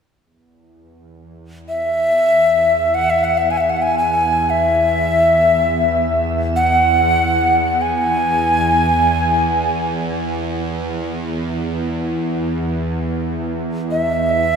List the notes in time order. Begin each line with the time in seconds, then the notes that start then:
0.23 E2
1.69 E5
2.94 F#5
3.10 E5
3.24 F#5
3.38 E5
3.51 G#5
3.58 E5 F#5
3.70 F#5
3.82 G#5
3.98 G#5
4.50 E5
6.56 F#5
7.81 G#5
13.91 E5